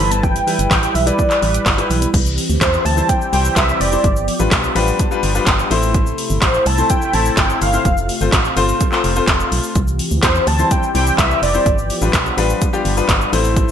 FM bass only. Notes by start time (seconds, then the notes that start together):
0.00 G1
0.59 G1
0.71 A1
0.95 B1
1.42 A1
1.66 G1
1.90 B1
2.14 C2
2.50 D2
2.61 E2
2.85 D2
3.33 C2
3.56 C2
3.81 F1
4.04 G1
4.40 A1
4.52 B1
4.76 A1
5.23 G1
5.47 G1
5.71 A1
6.30 G1
6.42 A1
6.66 C2
7.14 A1
7.37 G1
7.62 G1
7.85 F1
8.21 G1
8.33 A1
8.56 G1
9.04 F1
9.28 F1
9.52 B1
9.76 C2
10.11 D2
10.23 E2
10.47 D2
10.95 C2
11.18 C2
11.42 F1
11.66 G1
12.02 A1
12.13 B1
12.37 A1
12.85 G1
13.09 G1
13.33 A1